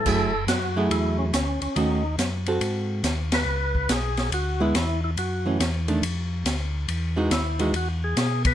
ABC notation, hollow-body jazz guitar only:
X:1
M:4/4
L:1/8
Q:"Swing" 1/4=141
K:F#m
V:1 name="Hollow-body jazz guitar"
[F,A,EG] z2 [F,A,EG]3 z2 | [^D,A,CF] z2 [^B,FA]3 z2 | z4 z [G,B,E] z2 | z [E,A,C] z [^D,A,=D] z4 |
z [E,G,^DF] z [E,G,DF] z4 |]